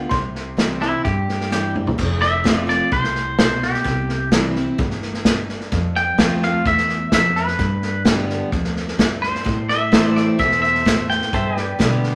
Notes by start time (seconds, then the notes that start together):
Already playing: B3 F4 G5
0.09 C2 C3 C6, kick, snare
0.35 snare
0.57 E3 G3 C4 E4, snare, hi-hat pedal
0.82 C4 E4, snare
1.05 G2 G4, kick, snare
1.29 snare
1.41 snare
1.50 E3 G3 C4 E4 G4, snare, hi-hat pedal
1.76 mid tom
1.87 floor tom
1.98 F1 F2, kick, snare, crash
2.22 E5, snare
2.44 F3 A3 C4 F4, kick, snare, hi-hat pedal
2.67 C4 F4 D5, snare
2.92 C2 A2 C5, kick, snare
3.04 snare
3.15 snare
3.38 B2 C5, kick, snare, hi-hat pedal
3.62 G4, snare
3.74 snare
3.84 C2 C3, kick, snare
4.09 snare
4.32 E3 G3 C4 E4, kick, snare, hi-hat pedal
4.55 C4 E4, snare
4.78 G1 A2, kick, snare
4.90 snare
5.02 snare
5.14 snare
5.25 G2, kick, snare, hi-hat pedal
5.49 snare
5.60 snare
5.72 F2, kick, snare
5.96 G5, snare
6.18 D2 F3 A3 C4 F4, kick, snare, hi-hat pedal
6.42 F5, snare
6.65 E2 E5, kick, snare
6.77 snare
6.89 snare
7.12 F2 E5, kick, snare, hi-hat pedal
7.36 B4, snare
7.47 snare
7.58 G2, kick, snare
7.82 snare
8.05 D3 G3 B3 G4, kick, snare, hi-hat pedal
8.29 snare
8.52 D2 F2, kick, snare
8.64 snare
8.76 snare
8.88 snare
8.99 G2, kick, snare, hi-hat pedal
9.22 C5, snare
9.35 snare
9.45 A2, kick, snare
9.69 E5, snare
9.92 E3 A3 C4 E4 A4 C5 E5, kick, snare, hi-hat pedal
10.16 D5, snare
10.39 E2 B2 E5, kick, snare
10.51 snare
10.62 E5, snare
10.75 snare
10.85 A2, kick, snare, hi-hat pedal
11.10 G5, snare
11.22 snare
11.33 G2 A4 C5 E5, kick, snare
11.55 B4, snare
11.59 G4 D5
11.79 B2 D3 G3 B3 G4, kick, snare, hi-hat pedal
12.03 snare